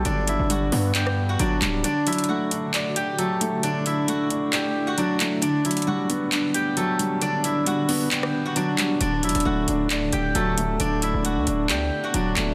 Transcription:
Already playing: D3 F#3 G3 A3 B3 D4 E4 G4 A4 E5 G5
0.05 G1 D3 D4 D5, closed hi-hat
0.28 E4 E5, closed hi-hat
0.39 G1
0.50 G3 F#4 F#5, closed hi-hat
0.72 G2 B3, open hi-hat
0.94 D4 G4 G5, clap, closed hi-hat
1.07 cross-stick
1.29 F#4 F#5
1.39 G1 F#3 D4 D5, closed hi-hat
1.62 D1 G3, clap, closed hi-hat
1.84 D3 A3 D4 F#4 D5, closed hi-hat
2.06 F#3 E4 E5, closed hi-hat
2.13 closed hi-hat
2.18 closed hi-hat
2.24 closed hi-hat
2.29 A3 F#4 F#5
2.51 D4, closed hi-hat
2.74 D5, clap, closed hi-hat
2.96 G4 G5, closed hi-hat
3.18 F#3 A3 A4, closed hi-hat
3.41 A3, closed hi-hat
3.63 D3 D4 E4 D5, closed hi-hat
3.86 E4 E5, closed hi-hat
4.08 A3 F#4 F#5, closed hi-hat
4.30 D4, closed hi-hat
4.53 G4 D5 G5, clap, closed hi-hat
4.87 F#4 F#5
4.98 F#3 D4 D5, closed hi-hat
5.20 A3, clap, closed hi-hat
5.42 D3 B3 D4 D5, closed hi-hat
5.65 F#3 E4 E5, closed hi-hat
5.71 closed hi-hat
5.77 closed hi-hat
5.82 closed hi-hat
5.87 G3 F#4 F#5
6.10 B3, closed hi-hat
6.32 D4, clap, closed hi-hat
6.54 G4 G5, closed hi-hat
6.77 F#3 A3 A4, closed hi-hat
6.99 G3, closed hi-hat
7.21 D3 D4 D5, closed hi-hat
7.44 E4 E5, closed hi-hat
7.66 G3 F#4 F#5, closed hi-hat
7.89 B3, open hi-hat
8.11 D4 G4 G5, clap, closed hi-hat
8.23 cross-stick
8.46 F#4 F#5
8.56 F#3 D4 D5, closed hi-hat
8.78 G3, clap, closed hi-hat
9.01 D1 D3 A3 D4 D5, closed hi-hat
9.23 E1 F#3 E4 E5, closed hi-hat
9.29 closed hi-hat
9.35 D1, closed hi-hat
9.40 closed hi-hat
9.45 D1 A3 F#4 F#5
9.68 D1 D4, closed hi-hat
9.90 D5, clap, closed hi-hat
10.13 D1 G4 G5, closed hi-hat
10.35 D1 F#3 A3 A4, closed hi-hat
10.57 A3, closed hi-hat
10.80 D1 D3 B3 D4 D5, closed hi-hat
11.02 E4 E5, closed hi-hat
11.14 D1
11.24 A3 F#4 F#5, closed hi-hat
11.36 D2
11.47 D1 D4, closed hi-hat
11.69 D2 G4 D5 G5, clap, closed hi-hat
12.04 F#4 F#5
12.14 D1 F#3 D4 D5, closed hi-hat
12.36 D1 A3, clap, closed hi-hat

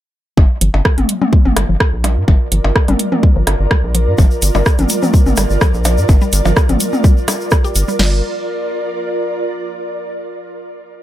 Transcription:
0.37 G1 G3 F4, kick, percussion blips
0.61 G1 F3, closed hi-hat
0.74 G1, percussion blips
0.85 F3, kick, cross-stick
0.98 G1, closed hi-hat, mid tom
1.05 A#4, closed hi-hat
1.20 G3 D5, mid tom
1.33 kick
1.45 G1 F3, mid tom
1.56 G1, cross-stick, closed hi-hat, percussion blips
1.69 G1 F3
1.80 kick, cross-stick
1.93 A#1
2.04 G3, closed hi-hat, percussion blips
2.17 G2
2.28 G1 F3, kick, percussion blips
2.52 G1 F3, closed hi-hat
2.64 G1, percussion blips
2.76 kick, cross-stick
2.88 G1 G3, closed hi-hat, mid tom
2.99 closed hi-hat
3.12 F3, mid tom
3.23 kick
3.36 G1 F3
3.47 G1, cross-stick, closed hi-hat, percussion blips
3.60 G1
3.71 G3, kick, cross-stick
3.84 A#1
3.95 F3, closed hi-hat
4.07 G2
4.18 G1 F3, kick, percussion blips, shaker
4.31 shaker
4.42 G1, closed hi-hat, shaker
4.55 G1 G3, percussion blips, shaker
4.66 kick, cross-stick, shaker
4.78 G1 F3, closed hi-hat, mid tom, shaker
4.89 closed hi-hat, shaker
5.03 F3, mid tom, shaker
5.14 kick, shaker
5.26 G1, mid tom, shaker
5.37 G1 G3, cross-stick, closed hi-hat, percussion blips, shaker
5.50 G1, shaker
5.61 F3, kick, cross-stick, shaker
5.74 A#1, shaker
5.85 F3, closed hi-hat, percussion blips, shaker
5.98 G2, shaker
6.09 G1, kick, percussion blips, shaker
6.21 G3, shaker
6.33 G1, closed hi-hat, shaker
6.45 G1 F3, percussion blips, shaker
6.57 kick, cross-stick, shaker
6.69 G1 F3, closed hi-hat, mid tom, shaker
6.80 closed hi-hat, shaker
6.93 mid tom, shaker
7.04 G3, kick, shaker
7.17 shaker
7.28 G3, cross-stick, closed hi-hat, percussion blips, shaker
7.41 shaker
7.51 G3, kick, cross-stick, shaker
7.64 G4, shaker
7.75 G1, closed hi-hat, shaker
7.88 G3, shaker
7.99 G1 G3 F4, snare, crash
8.07 A#4
8.14 D5

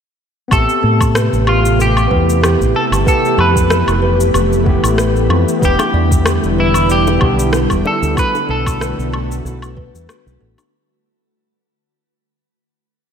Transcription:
0.48 A1 C3 B3 C4 G4 E5, kick, low woodblock, shaker
0.52 A3 G4 A4 B4
0.69 shaker
0.83 A2 A4
1.01 kick, low woodblock, shaker
1.15 B4, cross-stick, shaker
1.33 A1, shaker
1.47 F4 G4, low woodblock
1.65 shaker
1.79 G4 A4, shaker
1.97 low woodblock, shaker
2.08 E2 B3 C4 E4 B4, kick
2.13 G4
2.29 shaker
2.43 G4, cross-stick, low woodblock, shaker
2.60 A1, kick, shaker
2.75 A4
2.91 G1, low woodblock, shaker
3.04 E3 A3 B3 E4 B4, kick, shaker
3.08 G4 A4
3.25 shaker
3.38 F2 G4 B4, low woodblock
3.56 kick, shaker
3.70 A4, cross-stick, shaker
3.87 F1, low woodblock, shaker
4.02 B4
4.20 shaker
4.34 F1 G4, low woodblock, shaker
4.53 shaker
4.64 A3 B3 E4 A4, kick
4.69 G4
4.84 A1, low woodblock, shaker
4.98 B4, cross-stick, shaker
5.16 shaker
5.30 F2 G4, low woodblock
5.48 shaker
5.59 E1 D3 G3 B3 D4 E4 B4, kick, shaker
5.65 G4
5.79 high bongo, low woodblock, shaker
5.94 E2 D5
6.11 kick, shaker
6.26 G4, cross-stick, low woodblock, shaker
6.43 E1, shaker
6.58 E4 B4
6.74 low woodblock, shaker
6.90 G4 D5, shaker
7.07 high bongo, shaker
7.19 B1 B3 D4 E4 G4, kick, low woodblock
7.24 G4
7.39 shaker
7.53 B4, cross-stick, shaker
7.70 E1, kick, low woodblock, shaker
7.85 A4 D5, high bongo
8.02 D2, shaker
8.15 A3 B3 D4 F#4, kick, low woodblock, shaker
8.19 A4 B4
8.35 high bongo, shaker
8.49 B1 A4
8.66 kick, low woodblock, shaker
8.81 B4, cross-stick, shaker
8.98 B1, shaker
9.13 F#4, low woodblock
9.32 shaker
9.45 B1 A4, shaker
9.62 low woodblock, shaker
9.77 B4, kick
9.95 E2, shaker
10.09 F#4, cross-stick, low woodblock, shaker
10.26 B1, shaker
10.41 A1 A4
10.58 high bongo, low woodblock, shaker

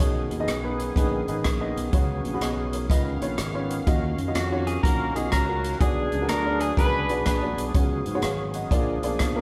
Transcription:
0.00 B1 B2 D#3 B3 C#4 D#4 G#4 C#5, kick, closed hi-hat
0.31 D#2, closed hi-hat
0.40 B3 D#4 G#4 D#5
0.48 B1, cross-stick, closed hi-hat
0.64 B3 D#4 G#4 B4
0.80 closed hi-hat
0.96 A#1 B3 D#4 G#4 B4, kick, closed hi-hat
1.28 G#1 B3 D#4 G#4 B4, closed hi-hat
1.44 A#1, kick, cross-stick, closed hi-hat
1.61 B3 D#4 G#4 D#5
1.76 B1, closed hi-hat
1.92 C#2 C#3 F#3 B3 C#4 F#4 G#4 C#5, kick, closed hi-hat
2.24 A#1, closed hi-hat
2.34 B3 F#4 G#4 B4
2.41 B1 B4 D#5, cross-stick, closed hi-hat
2.73 A#4 C#5, closed hi-hat
2.90 C#2 C#3 D#3 B3 C#4 F4 B4 D#5 F5, kick, closed hi-hat
3.21 A#1 C#4 F4 B4 C#5, cross-stick, closed hi-hat
3.38 G#1, cross-stick, closed hi-hat
3.54 C#4 F4 B4 C#5
3.71 closed hi-hat
3.87 D#2 D#3 C#4 F4 F#4 D#5, kick, closed hi-hat
4.18 F#2, closed hi-hat
4.28 C#4 F4 F#4 D#5
4.35 F2 A#3 C#4 F#4, cross-stick, closed hi-hat
4.52 C#4 F4 F#4 C#5
4.67 G#4, closed hi-hat
4.83 A#1 C#4 F4 F#4 A#4, kick, closed hi-hat
5.15 B1 C#4 F4 F#4 G#4 D#5, closed hi-hat
5.31 C#2 C#4 F#4 A#4, kick, cross-stick, closed hi-hat
5.48 C#4 F4 F#4 A#4
5.64 closed hi-hat
5.72 cross-stick
5.79 B1 B2 F#3 B3 D4 F#4 G#4 D5, kick, closed hi-hat
6.12 C#2, closed hi-hat
6.21 B3 F#4 G#4 A#4
6.29 D2 A#4, cross-stick, closed hi-hat
6.46 B3 F#4 G#4 D5
6.60 G#4, closed hi-hat
6.77 C#2 B3 D4 F#4 G#4 A#4 B4, kick, closed hi-hat
7.09 B1 B3 F#4 G#4 D5, closed hi-hat
7.26 A#1 D4 G#4 B4, kick, cross-stick, closed hi-hat
7.43 B3 F#4 G#4 D5
7.57 B1, closed hi-hat
7.75 C#2 C#3 F#3 B3 C#4 F#4 G#4 C#5, kick, closed hi-hat
8.06 G#2, closed hi-hat
8.15 B3 F#4 G#4 C#5
8.22 G#1 C#5 F5, cross-stick, closed hi-hat
8.54 D#5 F#5, closed hi-hat
8.71 A#1 A#2 F3 A#3 D4 F4 G#4 D5, kick, closed hi-hat
9.03 B1 A#3 F4 G#4 D5, cross-stick, closed hi-hat
9.19 B1, kick, cross-stick, closed hi-hat
9.36 A#3 F4 G#4 A#4

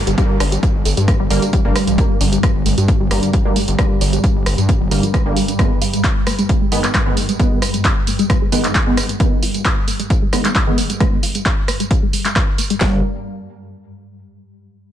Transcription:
Already playing: G2 G3, downlifter
0.07 G1 G3, closed hi-hat, tambourine
0.18 D3 G3 A#3, kick, closed hi-hat, tambourine
0.40 G1 D4, cross-stick, open hi-hat, tambourine
0.52 G3, closed hi-hat, tambourine
0.63 kick, closed hi-hat, tambourine
0.75 G1
0.85 G1 A3, open hi-hat, tambourine
0.97 G2 G3, closed hi-hat, tambourine
1.08 A#3, kick, cross-stick, closed hi-hat, tambourine
1.20 G1 G3
1.30 G1 D3 G3 A#3, open hi-hat, tambourine
1.42 G3, closed hi-hat, tambourine
1.53 G3, kick, closed hi-hat, tambourine
1.65 F1 D3 G3 A#3
1.76 A3, cross-stick, open hi-hat, tambourine
1.87 A1 G3, closed hi-hat, tambourine
1.98 D3 G3 A#3, kick, closed hi-hat, tambourine
2.21 G1 D4, open hi-hat, tambourine
2.33 G3, closed hi-hat, tambourine
2.43 kick, cross-stick, closed hi-hat, tambourine
2.55 G1
2.66 G1 A3, open hi-hat, tambourine
2.78 G2 G3, closed hi-hat, tambourine
2.88 A#3, kick, closed hi-hat, tambourine
3.00 G1 G3
3.11 G1 D3 G3 A#3, cross-stick, open hi-hat, tambourine
3.23 G3, closed hi-hat, tambourine
3.33 G3, kick, closed hi-hat, tambourine
3.45 D3 G3 A#3
3.56 A3, open hi-hat, tambourine
3.68 G1 G3, closed hi-hat, tambourine
3.79 D3 G3 A#3, kick, cross-stick, closed hi-hat, tambourine
4.01 G1 D4, open hi-hat, tambourine
4.13 G3, closed hi-hat, tambourine
4.24 kick, closed hi-hat, tambourine
4.36 G1
4.46 G1 A3, cross-stick, open hi-hat, tambourine
4.58 G2 G3, closed hi-hat, tambourine
4.69 A#3, kick, closed hi-hat, tambourine
4.81 G1 G3
4.91 G1 D3 G3 A#3, open hi-hat, tambourine
5.03 F3, closed hi-hat, tambourine
5.14 G3, kick, cross-stick, closed hi-hat, tambourine
5.26 G1 D3 G3 A#3
5.36 G3, open hi-hat, tambourine
5.48 D4, closed hi-hat, tambourine
5.59 D#3 G#3 B3, kick, cross-stick, closed hi-hat, tambourine
5.82 F4, open hi-hat, tambourine
5.93 G#3, closed hi-hat, tambourine
6.04 kick, clap, closed hi-hat, tambourine
6.27 A#3, cross-stick, open hi-hat, tambourine
6.39 G#3, closed hi-hat, tambourine
6.49 B3, kick, closed hi-hat, tambourine
6.61 G#3
6.72 D#3 G#3 B3, open hi-hat, tambourine
6.84 G#3, clap, closed hi-hat, tambourine
6.94 G#3, kick, cross-stick, clap, closed hi-hat, tambourine
7.06 D#3 G#3 B3
7.17 A#3, open hi-hat, tambourine
7.29 G#3, closed hi-hat, tambourine
7.39 D#3 G#3 B3, kick, closed hi-hat, tambourine
7.62 F4, cross-stick, open hi-hat, tambourine
7.74 G#3, closed hi-hat, tambourine
7.85 kick, clap, closed hi-hat, tambourine
8.07 A#3, open hi-hat, tambourine
8.19 G#3, closed hi-hat, tambourine
8.30 B3, kick, cross-stick, closed hi-hat, tambourine
8.42 G#3
8.52 D#3 G#3 B3, open hi-hat, tambourine
8.64 G#3, clap, closed hi-hat, tambourine
8.75 G#3, kick, clap, closed hi-hat, tambourine
8.87 D#3 G#3 B3
8.97 A#3, cross-stick, open hi-hat, tambourine
9.09 G#3, closed hi-hat, tambourine
9.20 D#3 G#3 B3, kick, closed hi-hat, tambourine
9.43 F4, open hi-hat, tambourine
9.54 G#3, closed hi-hat, tambourine
9.65 kick, cross-stick, clap, closed hi-hat, tambourine
9.88 A#3, open hi-hat, tambourine
10.00 G#3, closed hi-hat, tambourine
10.10 B3, kick, closed hi-hat, tambourine
10.22 G#3
10.33 D#3 G#3 B3, cross-stick, open hi-hat, tambourine
10.45 G#3, clap, closed hi-hat, tambourine
10.55 G#3, kick, clap, closed hi-hat, tambourine
10.67 D#3 G#3 B3
10.78 A#3, open hi-hat, tambourine
10.90 G#3, closed hi-hat, tambourine
11.00 D#3 G#3 B3, kick, cross-stick, closed hi-hat, tambourine
11.23 F4, open hi-hat, tambourine
11.35 G#3, closed hi-hat, tambourine
11.46 kick, clap, closed hi-hat, tambourine
11.68 A#3, cross-stick, open hi-hat, tambourine
11.80 G#3, closed hi-hat, tambourine
11.91 B3, kick, closed hi-hat, tambourine
12.03 G#3
12.13 G#3, open hi-hat, tambourine
12.25 G#3, clap, closed hi-hat, tambourine
12.36 G#3, kick, cross-stick, clap, closed hi-hat, tambourine
12.58 A#3, open hi-hat, tambourine
12.70 G#3, closed hi-hat, tambourine
12.81 G1 D3 G3 A#3, kick, snare, clap

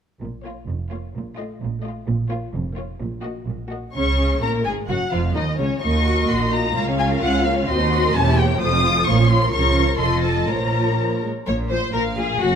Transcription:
0.21 A#1 A#2
0.45 A#3 F4 C#5
0.69 F1 F2
0.92 A#3 F4 C#5
1.15 A#1 A#2
1.38 A3 F4 D#5
1.61 A#1 A#2
1.84 A3 F4 D#5
2.08 A#1 A#2
2.30 A#3 F4 C#5
2.54 F1 F2
2.76 A#3 F4 C#5
3.00 A#1 A#2
3.23 A#3 F#4 D#5
3.47 A#1 A#2
3.71 A#3 F#4 D#5
3.94 C#2 C#3 C#4 C#5 C#6
4.42 A#1 A#2 A#3 A#4 A#5
4.65 G#1 G#2 G#3 G#4 G#5
4.89 F#1 F#2 F#3 F#4 F#5
5.12 F1 F2 F3 F4 F5
5.35 D#2 D#3 D#4 D#5
5.58 C#2 C#3 C#4 C#5
5.82 D#2 A#3 F#4 D#5 C#6
5.94 D#4
6.06 F#4
6.18 A#4
6.29 A#1 A#2 F#4 C6
6.41 D#4
6.52 A#3 A#5
6.64 D#4
6.75 C#2 A#3 C#4 F4 F5 A#5
6.88 C#4
6.99 F4 G#5
7.11 A#4
7.22 C#2 F4 F#5
7.34 C#4
7.45 A#3 F5
7.57 C#4
7.68 D#2 C4 F#4 D#5 C6
7.81 D#4
7.92 F#4
8.04 A#4
8.14 E1 E2 A#3 C#4 G4 C#5 A5
8.27 E4
8.38 G4 G5
8.51 A#4
8.60 F1 F2 F3 A3 F4 C5 D#6
8.73 C4
8.85 F4
8.97 A4
9.06 A#1 A#2 A#3 C#5 C#6
9.20 C#4
9.28 F4 C6
9.43 A#4
9.53 C#2 C#3 F3 F4 A#4 C#5 C#6
9.99 F1 F2 F3 F4 A4 D#5 C6
10.23 A5
10.47 A#1 A#2 F3 F4 A#4 C#5 A#5
10.98 F3
11.22 G#3
11.47 A#1 A#2 F3 A#3 C#5
11.70 F3 A#3 C5
11.94 A#1 A#2 F3 A#3 A#4 F5
12.17 F3 A#3 G#4
12.41 F#1 F#2 F#3 A#3 F#4 F#5

